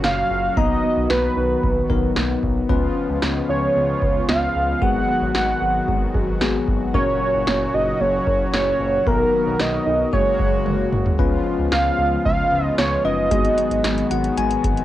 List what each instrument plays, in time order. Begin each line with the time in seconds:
Already playing: analog synth pad A#2 C#3 F#3 C#4 F#4, tine electric piano C#4 F#4 A#4
0.04 analog synth bass F#1, synth arpeggio sound A#3, analog synth lead F5, snare
0.30 analog synth bass F#1
0.57 analog synth bass B1, analog synth pad D#3 B3, synth arpeggio sound A#3, tine electric piano B3 D#4 A#5, analog synth lead D#5, kick
0.84 synth arpeggio sound B3
0.97 analog synth bass B1
1.10 analog synth bass B1, synth arpeggio sound A#3, analog synth lead B4, snare
1.37 analog synth bass B1, synth arpeggio sound D#4
1.63 analog synth bass B1, synth arpeggio sound A#3, kick
1.90 analog synth bass B1, tine electric piano B3 D#4 A#4, synth arpeggio sound A#4, kick
2.16 analog synth bass B1, synth arpeggio sound A#3, snare
2.43 analog synth bass B1, kick
2.69 analog synth bass C#2, analog synth pad C#3 F3 G#3 F4, synth arpeggio sound B3, tine electric piano C#4 F4 B4, kick
2.96 synth arpeggio sound C#4
3.09 analog synth bass C#2
3.22 analog synth bass C#2, synth arpeggio sound B3, snare
3.49 analog synth bass C#2, synth arpeggio sound F4, analog synth lead C#5
3.76 analog synth bass C#2, synth arpeggio sound B3
4.02 analog synth bass C#2, synth arpeggio sound B4, kick
4.29 analog synth bass C#2, synth arpeggio sound B3, analog synth lead F5, snare
4.55 analog synth bass C#2
4.82 analog synth bass G#1, analog synth pad D#3 F#3 F#4, synth arpeggio sound G#3, tine electric piano B3 F#4 G#4, analog synth lead F#5, kick
5.08 synth arpeggio sound B3
5.22 analog synth bass G#1
5.35 analog synth bass G#1, synth arpeggio sound G#3, analog synth lead F#5, snare
5.61 analog synth bass G#1, synth arpeggio sound F#4
5.88 analog synth bass G#1, synth arpeggio sound G#3, kick
6.15 analog synth bass G#1, synth arpeggio sound G#4, kick
6.41 analog synth bass G#1, synth arpeggio sound G#3, tine electric piano B3 F#4 G#4, snare
6.68 analog synth bass G#1, kick
6.94 analog synth bass F#1, analog synth pad A#2 C#3 C#4, synth arpeggio sound A#3, tine electric piano C#4 F#4 A#4, analog synth lead C#5, kick
7.21 synth arpeggio sound C#4
7.34 analog synth bass F#1
7.47 analog synth bass F#1, synth arpeggio sound A#3, snare
7.74 analog synth bass F#1, synth arpeggio sound F#4, analog synth lead D#5
8.00 analog synth bass F#1, synth arpeggio sound A#3, analog synth lead C#5
8.27 analog synth bass F#1, synth arpeggio sound A#4, kick
8.53 analog synth bass F#1, synth arpeggio sound A#3, analog synth lead C#5, snare
8.80 analog synth bass F#1
9.07 analog synth bass B1, analog synth pad D#3 B3 A#4, synth arpeggio sound A#3, tine electric piano B3 D#4 A#4, analog synth lead A#4, kick
9.33 synth arpeggio sound B3
9.47 analog synth bass B1
9.60 analog synth bass B1, synth arpeggio sound A#3, analog synth lead D#5, snare
9.86 analog synth bass B1, synth arpeggio sound D#4
10.13 analog synth bass F#1, analog synth pad C#3 G#3 A#3 F#4, synth arpeggio sound G#3, tine electric piano A#3 F#4 G#4, analog synth lead C#5, kick
10.39 analog synth bass F#1, synth arpeggio sound G#4, kick
10.66 analog synth bass F#1, synth arpeggio sound G#3, high tom
10.92 analog synth bass F#1, mid tom
11.06 floor tom
11.19 analog synth bass C#2, analog synth pad C#3 F3 G#3 B3 F4, synth arpeggio sound B3, tine electric piano C#4 F4 B4, kick
11.46 synth arpeggio sound C#4
11.59 analog synth bass C#2
11.72 analog synth bass C#2, synth arpeggio sound B3, analog synth lead F5, snare
11.99 analog synth bass C#2, synth arpeggio sound F4
12.25 analog synth bass C#2, synth arpeggio sound B3, analog synth lead F5, kick
12.52 analog synth bass C#2, synth arpeggio sound B4
12.78 analog synth bass C#2, synth arpeggio sound B3, analog synth lead C#5, snare
13.05 analog synth bass F#1, tine electric piano C#4 F4 B4, analog synth lead D#5
13.31 analog synth bass G#1, analog synth pad D#3 F#3 B3 F#4, synth arpeggio sound G#3, tine electric piano B3 F#4 G#4, kick, closed hi-hat
13.45 closed hi-hat
13.58 synth arpeggio sound B3, closed hi-hat
13.71 analog synth bass G#1, closed hi-hat
13.84 analog synth bass G#1, synth arpeggio sound G#3, snare, closed hi-hat
13.98 closed hi-hat
14.11 analog synth bass G#1, synth arpeggio sound F#4, tine electric piano F#5, closed hi-hat
14.24 closed hi-hat
14.38 analog synth bass G#1, synth arpeggio sound G#3, tine electric piano G#5, closed hi-hat
14.51 closed hi-hat
14.64 analog synth bass G#1, synth arpeggio sound G#4, kick, closed hi-hat
14.77 closed hi-hat